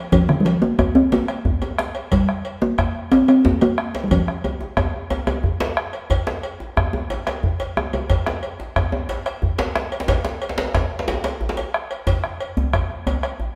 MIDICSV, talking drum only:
0, 0, Header, 1, 2, 480
1, 0, Start_track
1, 0, Key_signature, -2, "major"
1, 0, Tempo, 331858
1, 176, Time_signature, 12, 3, 24, 8
1, 19602, End_track
2, 0, Start_track
2, 0, Title_t, "Talking drum"
2, 0, Program_c, 0, 116
2, 0, Note_on_c, 0, 53, 84
2, 170, Note_off_c, 0, 53, 0
2, 178, Note_on_c, 0, 53, 86
2, 402, Note_off_c, 0, 53, 0
2, 416, Note_on_c, 0, 50, 76
2, 584, Note_on_c, 0, 55, 63
2, 606, Note_off_c, 0, 50, 0
2, 653, Note_on_c, 0, 53, 77
2, 674, Note_off_c, 0, 55, 0
2, 885, Note_off_c, 0, 53, 0
2, 893, Note_on_c, 0, 58, 95
2, 1120, Note_off_c, 0, 58, 0
2, 1139, Note_on_c, 0, 58, 89
2, 1376, Note_on_c, 0, 60, 86
2, 1397, Note_off_c, 0, 58, 0
2, 1618, Note_off_c, 0, 60, 0
2, 1625, Note_on_c, 0, 58, 91
2, 2527, Note_off_c, 0, 58, 0
2, 3068, Note_on_c, 0, 55, 91
2, 3788, Note_on_c, 0, 58, 101
2, 3809, Note_off_c, 0, 55, 0
2, 4506, Note_on_c, 0, 60, 108
2, 4528, Note_off_c, 0, 58, 0
2, 4741, Note_off_c, 0, 60, 0
2, 4750, Note_on_c, 0, 60, 84
2, 4990, Note_on_c, 0, 58, 87
2, 5012, Note_off_c, 0, 60, 0
2, 5228, Note_off_c, 0, 58, 0
2, 5235, Note_on_c, 0, 58, 103
2, 5839, Note_on_c, 0, 55, 58
2, 5861, Note_off_c, 0, 58, 0
2, 5948, Note_on_c, 0, 53, 71
2, 5969, Note_off_c, 0, 55, 0
2, 6488, Note_off_c, 0, 53, 0
2, 19602, End_track
0, 0, End_of_file